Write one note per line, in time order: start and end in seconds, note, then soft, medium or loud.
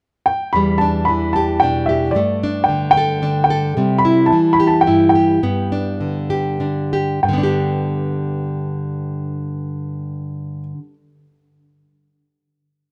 0.26 0.51 G5 medium
0.53 2.13 E2 medium
0.53 2.16 G3 soft
0.53 0.81 B5 medium
0.78 1.62 D4 soft
0.78 1.07 A5 medium
1.05 2.12 E3 soft
1.05 1.31 B5 medium
1.33 1.89 G4 medium
1.33 1.62 A5 medium
1.60 2.13 B2 medium
1.60 2.13 D4 soft
1.60 1.86 G5 medium
1.86 2.19 G4 medium
1.86 2.15 E5 medium
2.11 3.73 G2 medium
2.11 2.69 D5 medium
2.16 3.74 A3 medium
2.43 3.22 D4 soft
2.64 2.89 G5 medium
2.69 3.21 D3 soft
2.91 3.42 G5 medium
2.97 3.49 A4 medium
3.22 3.73 D3 medium
3.22 3.73 D4 soft
3.44 3.97 G5 medium
3.50 3.74 A4 medium
3.77 4.31 C3 medium
3.77 5.43 G3 medium
3.98 4.29 B5 medium
4.05 4.86 E4 medium
4.26 4.57 A5 medium
4.33 5.39 E3 medium
4.53 4.70 B5 medium
4.60 5.15 G4 medium
4.67 4.82 A5 medium
4.81 5.08 G5 medium
4.86 5.39 G2 medium
4.86 5.39 E4 medium
5.09 6.54 G5 medium
5.15 6.30 G4 medium
5.43 7.20 G2 medium
5.43 7.20 B3 medium
5.72 6.59 D4 soft
6.01 6.59 D3 medium
6.30 6.91 G4 medium
6.60 7.19 D3 medium
6.60 7.19 D4 soft
6.93 7.20 G4 medium
7.23 10.73 G2 medium
7.23 10.59 G5 medium
7.29 10.79 D3 medium
7.33 10.83 B3 soft
7.38 10.88 D4 soft
7.43 10.93 G4 soft